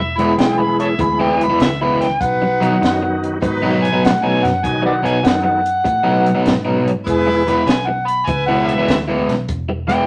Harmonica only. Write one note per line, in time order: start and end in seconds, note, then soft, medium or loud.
0.00 0.19 E5 loud
0.17 0.37 B5 loud
0.39 0.61 G5 loud
0.60 0.78 B5 loud
0.80 0.87 A4 medium
0.80 0.87 C#5 medium
0.80 0.99 E5 medium
1.01 1.19 B5 medium
1.21 1.40 G5 medium
1.44 1.61 B5 loud
1.62 1.80 E5 medium
1.82 2.00 B5 medium
2.01 2.20 G5 medium
2.21 3.38 F#5 loud
3.83 4.02 G#5 loud
4.05 4.26 F#5 medium
4.25 4.46 G#5 loud
4.45 4.66 F#5 loud
4.65 4.84 G#5 medium
4.86 4.93 B4 medium
4.86 4.94 D5 medium
4.86 5.08 F#5 medium
5.06 5.26 G#5 loud
5.25 5.44 F#5 loud
5.45 6.62 F#5 loud
7.49 7.69 B5 loud
7.68 7.88 G#5 loud
7.87 8.08 F#5 loud
8.07 8.28 B5 loud
8.26 8.46 G#5 medium
8.46 8.68 F#5 loud
8.67 9.00 E5 loud
9.88 10.07 G5 loud